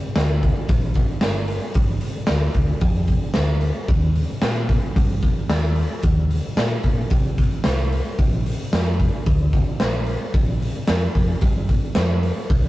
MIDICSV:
0, 0, Header, 1, 3, 480
1, 0, Start_track
1, 0, Tempo, 531915
1, 1589, Time_signature, 4, 2, 24, 8
1, 4476, Tempo, 538117
1, 11368, End_track
2, 0, Start_track
2, 0, Title_t, "Picked electric bass"
2, 0, Program_c, 0, 34
2, 142, Note_on_c, 0, 38, 85
2, 445, Note_off_c, 0, 38, 0
2, 625, Note_on_c, 0, 34, 90
2, 927, Note_off_c, 0, 34, 0
2, 1106, Note_on_c, 0, 31, 86
2, 1408, Note_off_c, 0, 31, 0
2, 1579, Note_on_c, 0, 31, 86
2, 1884, Note_off_c, 0, 31, 0
2, 2070, Note_on_c, 0, 38, 83
2, 2220, Note_off_c, 0, 38, 0
2, 2297, Note_on_c, 0, 38, 79
2, 2452, Note_off_c, 0, 38, 0
2, 2542, Note_on_c, 0, 41, 90
2, 2846, Note_off_c, 0, 41, 0
2, 3032, Note_on_c, 0, 38, 90
2, 3334, Note_off_c, 0, 38, 0
2, 3502, Note_on_c, 0, 39, 84
2, 3808, Note_off_c, 0, 39, 0
2, 3992, Note_on_c, 0, 46, 85
2, 4296, Note_off_c, 0, 46, 0
2, 4474, Note_on_c, 0, 43, 92
2, 4775, Note_off_c, 0, 43, 0
2, 4951, Note_on_c, 0, 39, 90
2, 5253, Note_off_c, 0, 39, 0
2, 5434, Note_on_c, 0, 39, 91
2, 5735, Note_off_c, 0, 39, 0
2, 5909, Note_on_c, 0, 46, 81
2, 6061, Note_off_c, 0, 46, 0
2, 6158, Note_on_c, 0, 46, 82
2, 6306, Note_off_c, 0, 46, 0
2, 6390, Note_on_c, 0, 48, 91
2, 6692, Note_off_c, 0, 48, 0
2, 6878, Note_on_c, 0, 36, 90
2, 7178, Note_off_c, 0, 36, 0
2, 7359, Note_on_c, 0, 34, 82
2, 7659, Note_off_c, 0, 34, 0
2, 7835, Note_on_c, 0, 41, 89
2, 8136, Note_off_c, 0, 41, 0
2, 8315, Note_on_c, 0, 38, 91
2, 8616, Note_off_c, 0, 38, 0
2, 8796, Note_on_c, 0, 34, 87
2, 9098, Note_off_c, 0, 34, 0
2, 9279, Note_on_c, 0, 34, 86
2, 9580, Note_off_c, 0, 34, 0
2, 9764, Note_on_c, 0, 41, 87
2, 9912, Note_off_c, 0, 41, 0
2, 9997, Note_on_c, 0, 41, 85
2, 10147, Note_off_c, 0, 41, 0
2, 10233, Note_on_c, 0, 43, 88
2, 10536, Note_off_c, 0, 43, 0
2, 10721, Note_on_c, 0, 41, 89
2, 11021, Note_off_c, 0, 41, 0
2, 11206, Note_on_c, 0, 36, 87
2, 11368, Note_off_c, 0, 36, 0
2, 11368, End_track
3, 0, Start_track
3, 0, Title_t, "Drums"
3, 141, Note_on_c, 9, 38, 101
3, 143, Note_on_c, 9, 46, 69
3, 231, Note_off_c, 9, 38, 0
3, 233, Note_off_c, 9, 46, 0
3, 387, Note_on_c, 9, 46, 52
3, 388, Note_on_c, 9, 36, 74
3, 478, Note_off_c, 9, 36, 0
3, 478, Note_off_c, 9, 46, 0
3, 619, Note_on_c, 9, 46, 72
3, 625, Note_on_c, 9, 36, 114
3, 710, Note_off_c, 9, 46, 0
3, 715, Note_off_c, 9, 36, 0
3, 848, Note_on_c, 9, 46, 55
3, 862, Note_on_c, 9, 36, 75
3, 939, Note_off_c, 9, 46, 0
3, 952, Note_off_c, 9, 36, 0
3, 1092, Note_on_c, 9, 38, 101
3, 1095, Note_on_c, 9, 46, 71
3, 1182, Note_off_c, 9, 38, 0
3, 1185, Note_off_c, 9, 46, 0
3, 1333, Note_on_c, 9, 46, 58
3, 1423, Note_off_c, 9, 46, 0
3, 1572, Note_on_c, 9, 46, 75
3, 1582, Note_on_c, 9, 36, 106
3, 1663, Note_off_c, 9, 46, 0
3, 1672, Note_off_c, 9, 36, 0
3, 1812, Note_on_c, 9, 46, 56
3, 1903, Note_off_c, 9, 46, 0
3, 2047, Note_on_c, 9, 38, 106
3, 2049, Note_on_c, 9, 46, 74
3, 2137, Note_off_c, 9, 38, 0
3, 2140, Note_off_c, 9, 46, 0
3, 2294, Note_on_c, 9, 46, 55
3, 2299, Note_on_c, 9, 36, 74
3, 2384, Note_off_c, 9, 46, 0
3, 2389, Note_off_c, 9, 36, 0
3, 2534, Note_on_c, 9, 46, 78
3, 2540, Note_on_c, 9, 36, 106
3, 2624, Note_off_c, 9, 46, 0
3, 2630, Note_off_c, 9, 36, 0
3, 2773, Note_on_c, 9, 46, 57
3, 2780, Note_on_c, 9, 36, 76
3, 2863, Note_off_c, 9, 46, 0
3, 2870, Note_off_c, 9, 36, 0
3, 3011, Note_on_c, 9, 38, 103
3, 3013, Note_on_c, 9, 46, 71
3, 3101, Note_off_c, 9, 38, 0
3, 3104, Note_off_c, 9, 46, 0
3, 3256, Note_on_c, 9, 46, 54
3, 3346, Note_off_c, 9, 46, 0
3, 3504, Note_on_c, 9, 46, 72
3, 3505, Note_on_c, 9, 36, 110
3, 3594, Note_off_c, 9, 46, 0
3, 3595, Note_off_c, 9, 36, 0
3, 3750, Note_on_c, 9, 46, 50
3, 3840, Note_off_c, 9, 46, 0
3, 3985, Note_on_c, 9, 38, 107
3, 3988, Note_on_c, 9, 46, 66
3, 4076, Note_off_c, 9, 38, 0
3, 4078, Note_off_c, 9, 46, 0
3, 4233, Note_on_c, 9, 36, 74
3, 4233, Note_on_c, 9, 46, 49
3, 4323, Note_off_c, 9, 36, 0
3, 4324, Note_off_c, 9, 46, 0
3, 4478, Note_on_c, 9, 36, 106
3, 4482, Note_on_c, 9, 46, 68
3, 4567, Note_off_c, 9, 36, 0
3, 4571, Note_off_c, 9, 46, 0
3, 4714, Note_on_c, 9, 36, 78
3, 4715, Note_on_c, 9, 46, 54
3, 4803, Note_off_c, 9, 36, 0
3, 4804, Note_off_c, 9, 46, 0
3, 4953, Note_on_c, 9, 38, 105
3, 4956, Note_on_c, 9, 46, 72
3, 5043, Note_off_c, 9, 38, 0
3, 5045, Note_off_c, 9, 46, 0
3, 5189, Note_on_c, 9, 46, 57
3, 5278, Note_off_c, 9, 46, 0
3, 5426, Note_on_c, 9, 46, 75
3, 5435, Note_on_c, 9, 36, 114
3, 5515, Note_off_c, 9, 46, 0
3, 5524, Note_off_c, 9, 36, 0
3, 5677, Note_on_c, 9, 46, 57
3, 5766, Note_off_c, 9, 46, 0
3, 5913, Note_on_c, 9, 38, 106
3, 5916, Note_on_c, 9, 46, 76
3, 6002, Note_off_c, 9, 38, 0
3, 6005, Note_off_c, 9, 46, 0
3, 6146, Note_on_c, 9, 46, 55
3, 6153, Note_on_c, 9, 36, 74
3, 6235, Note_off_c, 9, 46, 0
3, 6243, Note_off_c, 9, 36, 0
3, 6385, Note_on_c, 9, 46, 79
3, 6395, Note_on_c, 9, 36, 105
3, 6475, Note_off_c, 9, 46, 0
3, 6484, Note_off_c, 9, 36, 0
3, 6633, Note_on_c, 9, 46, 60
3, 6636, Note_on_c, 9, 36, 78
3, 6722, Note_off_c, 9, 46, 0
3, 6725, Note_off_c, 9, 36, 0
3, 6865, Note_on_c, 9, 38, 105
3, 6868, Note_on_c, 9, 46, 74
3, 6954, Note_off_c, 9, 38, 0
3, 6957, Note_off_c, 9, 46, 0
3, 7121, Note_on_c, 9, 46, 54
3, 7210, Note_off_c, 9, 46, 0
3, 7354, Note_on_c, 9, 46, 76
3, 7355, Note_on_c, 9, 36, 106
3, 7443, Note_off_c, 9, 46, 0
3, 7445, Note_off_c, 9, 36, 0
3, 7600, Note_on_c, 9, 46, 55
3, 7690, Note_off_c, 9, 46, 0
3, 7838, Note_on_c, 9, 38, 105
3, 7841, Note_on_c, 9, 46, 68
3, 7927, Note_off_c, 9, 38, 0
3, 7930, Note_off_c, 9, 46, 0
3, 8077, Note_on_c, 9, 36, 73
3, 8084, Note_on_c, 9, 46, 51
3, 8167, Note_off_c, 9, 36, 0
3, 8174, Note_off_c, 9, 46, 0
3, 8313, Note_on_c, 9, 46, 70
3, 8316, Note_on_c, 9, 36, 110
3, 8402, Note_off_c, 9, 46, 0
3, 8405, Note_off_c, 9, 36, 0
3, 8554, Note_on_c, 9, 36, 78
3, 8554, Note_on_c, 9, 46, 53
3, 8643, Note_off_c, 9, 36, 0
3, 8643, Note_off_c, 9, 46, 0
3, 8793, Note_on_c, 9, 38, 107
3, 8795, Note_on_c, 9, 46, 69
3, 8882, Note_off_c, 9, 38, 0
3, 8885, Note_off_c, 9, 46, 0
3, 9030, Note_on_c, 9, 46, 54
3, 9119, Note_off_c, 9, 46, 0
3, 9276, Note_on_c, 9, 36, 107
3, 9277, Note_on_c, 9, 46, 70
3, 9365, Note_off_c, 9, 36, 0
3, 9366, Note_off_c, 9, 46, 0
3, 9527, Note_on_c, 9, 46, 55
3, 9616, Note_off_c, 9, 46, 0
3, 9752, Note_on_c, 9, 38, 110
3, 9755, Note_on_c, 9, 46, 78
3, 9842, Note_off_c, 9, 38, 0
3, 9844, Note_off_c, 9, 46, 0
3, 9998, Note_on_c, 9, 46, 57
3, 9999, Note_on_c, 9, 36, 79
3, 10087, Note_off_c, 9, 46, 0
3, 10088, Note_off_c, 9, 36, 0
3, 10231, Note_on_c, 9, 46, 81
3, 10239, Note_on_c, 9, 36, 113
3, 10320, Note_off_c, 9, 46, 0
3, 10328, Note_off_c, 9, 36, 0
3, 10478, Note_on_c, 9, 46, 58
3, 10480, Note_on_c, 9, 36, 76
3, 10568, Note_off_c, 9, 46, 0
3, 10569, Note_off_c, 9, 36, 0
3, 10711, Note_on_c, 9, 38, 110
3, 10714, Note_on_c, 9, 46, 73
3, 10800, Note_off_c, 9, 38, 0
3, 10803, Note_off_c, 9, 46, 0
3, 10960, Note_on_c, 9, 46, 58
3, 11049, Note_off_c, 9, 46, 0
3, 11202, Note_on_c, 9, 36, 113
3, 11202, Note_on_c, 9, 46, 74
3, 11291, Note_off_c, 9, 36, 0
3, 11292, Note_off_c, 9, 46, 0
3, 11368, End_track
0, 0, End_of_file